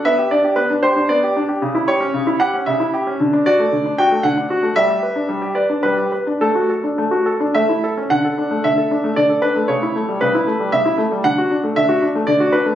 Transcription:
\new Staff \with { instrumentName = "Grand piano" } { \time 3/4 \key g \major \tempo 4 = 114 << { e''8 d''8 b'8 c''8 d''4 | \key d \major r8 cis''4 fis''8 e''4 | r8 d''4 g''8 fis''4 | e''4. d''8 b'4 |
a'2 e''4 | fis''4 e''4 d''8 b'8 | cis''4 b'4 e''4 | fis''4 e''4 d''8 b'8 | } \\ { b16 g'16 d'16 g'16 b16 d'16 g'16 d'16 b16 g'16 d'16 g'16 | cis16 e'16 g'16 cis'16 cis16 e'16 g'16 cis'16 cis16 e'16 g'16 cis'16 | d16 d'16 fis'16 a16 d16 d'16 fis'16 a16 d16 d'16 fis'16 a16 | g16 g'16 b'16 d'16 g16 g'16 b'16 d'16 g16 g'16 b'16 d'16 |
a16 fis'16 a'16 d'16 a16 fis'16 a'16 d'16 a16 e'16 a'16 cis'16 | d16 a'16 d'16 a16 d16 a'16 d'16 a16 d16 a'16 d'16 a16 | cis16 e'16 a16 g16 cis16 e'16 a16 g16 cis16 e'16 a16 g16 | d16 fis'16 d'16 a16 d16 fis'16 d'16 a16 d16 fis'16 d'16 a16 | } >> }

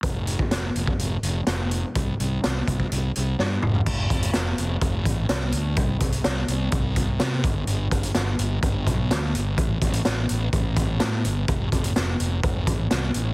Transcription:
<<
  \new Staff \with { instrumentName = "Fingered electric bass" } { \clef bass \time 4/4 \key f \lydian \tempo 4 = 126 f,,4 f,,8 f,,8 f,,8 f,,8 f,,4 | c,8 c,8 c,8 c,8 c,8 c,8 g,8 f,,8 | f,,8 f,,8 f,,8 f,,8 f,,8 a,,8 c,8 d,8 | c,8 c,8 c,8 c,8 c,4 c8 g,,8 |
g,,8 g,,8 g,,8 g,,8 g,,8 b,,8 d,8 g,,8 | a,,8 a,,8 a,,8 a,,8 a,,4 a,8 g,,8 | f,,8 f,,8 f,,8 f,,8 f,,8 a,,8 c,8 a,,8 | }
  \new DrumStaff \with { instrumentName = "Drums" } \drummode { \time 4/4 <hh bd>8 hh16 bd16 <hh sn>8 hh16 bd16 hh8 hh8 <hh sn>8 hh8 | <hh bd>8 hh8 <hh sn>8 <hh bd>16 bd16 hh8 hh8 sn8 toml16 tomfh16 | <cymc bd>8 <hh bd>16 hh16 <hh sn>8 hh8 <hh bd>8 <hh bd>8 <hh sn>8 hh8 | <hh bd>8 <hh bd>16 hh16 <hh sn>8 hh8 <hh bd>8 <hh bd>8 <hh sn>16 sn16 <hh bd>8 |
hh8 <hh bd>16 hh16 <hh sn>8 hh8 <hh bd>8 <hh bd>8 <hh sn>8 hh8 | <hh bd>8 <hh bd>16 hh16 <hh sn>8 hh8 <hh bd>8 <hh bd>8 <hh sn>8 hh8 | <hh bd>8 <hh bd>16 hh16 <hh sn>8 hh8 <hh bd>8 <hh bd>8 <hh sn>8 hh8 | }
>>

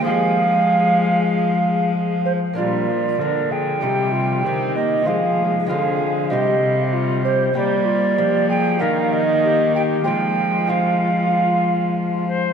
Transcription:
<<
  \new Staff \with { instrumentName = "Recorder" } { \time 4/4 \key f \dorian \tempo 4 = 95 f''2.~ f''8 c''8 | d''4. g''2 ees''8 | f''4 f''4 ees''4 r8 c''8 | d''4. g''8 f''8 ees''4 g''8 |
g''4 f''2 r4 | }
  \new Staff \with { instrumentName = "Recorder" } { \time 4/4 \key f \dorian aes'2.~ aes'8 r8 | f'4 bes'8 aes'8 g'8 f'8 g'4 | aes'4 aes'4 g'4 f'8 g'8 | g'8 f'8 g'8 aes'8 bes'8 r8 g'8 g'8 |
f'2.~ f'8 c''8 | }
  \new Staff \with { instrumentName = "Lute" } { \time 4/4 \key f \dorian <aes c' aes'>1 | <bes d' f'>2 <c' ees'>2 | <aes c' f'>4 <aes c' f'>4 <c' g'>2 | <bes g''>2 <ees' g'>2 |
<aes c' f'>4 <aes c' f'>2. | }
  \new Staff \with { instrumentName = "Lute" } { \clef bass \time 4/4 \key f \dorian f2.~ f8 r8 | bes,4 d4 c4 ees4 | f4 d4 c2 | g4 f4 ees2 |
f2.~ f8 r8 | }
  \new Staff \with { instrumentName = "Viola" } { \clef bass \time 4/4 \key f \dorian aes2.~ aes8 r8 | g8 f8 f4 g4 c'8 bes8 | aes8 aes8 f4 g8 g4. | bes2 bes2 |
aes2.~ aes8 r8 | }
  \new Staff \with { instrumentName = "Cello" } { \clef bass \time 4/4 \key f \dorian f2.~ f8 r8 | bes,4 d4 c4 ees4 | f4 d4 c2 | g4 f4 ees2 |
f2.~ f8 r8 | }
>>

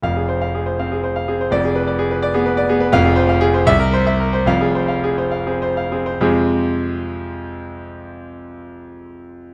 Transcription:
<<
  \new Staff \with { instrumentName = "Grand piano" } { \time 6/8 \key f \minor \tempo 4. = 72 << { f''8 r2 r8 | d''8 r2 r8 | f''8 r4 e''8 r4 | f''8 r2 r8 |
<f, c aes c' f' aes'>2.~ | <f, c aes c' f' aes'>2. | } \\ { r16 aes'16 c''16 f''16 aes'16 c''16 f''16 aes'16 c''16 f''16 aes'16 c''16 | r16 aes'16 ces''16 d''16 aes'16 ces''16 d''16 aes'16 ces''16 d''16 aes'16 ces''16 | r16 aes'16 c''16 f''16 aes'16 c''16 r16 bes'16 c''16 e''16 bes'16 c''16 | r16 aes'16 c''16 f''16 aes'16 c''16 f''16 aes'16 c''16 f''16 aes'16 c''16 |
r2. | r2. | } >> }
  \new Staff \with { instrumentName = "Grand piano" } { \clef bass \time 6/8 \key f \minor <f,, f,>4. c'8 r8 c'8 | <f,, f,>4.~ <f,, f,>16 ces'8 r16 ces'8 | <f,, f,>4. c,4. | <f,, f,>4.~ <f,, f,>16 c'8 r16 c'8 |
r2. | r2. | }
>>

